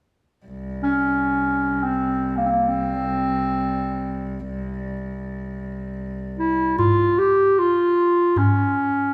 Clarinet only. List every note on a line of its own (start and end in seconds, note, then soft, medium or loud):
0.83 1.85 C#4 medium
1.84 2.39 C4 medium
2.37 2.47 A#3 medium
2.45 2.68 A#3 medium
2.45 2.49 C4 medium
2.66 4.68 C4 medium
6.39 6.76 E4 medium
6.78 7.20 F4 medium
7.18 7.60 G4 medium
7.59 8.39 F4 medium
8.38 9.14 C#4 medium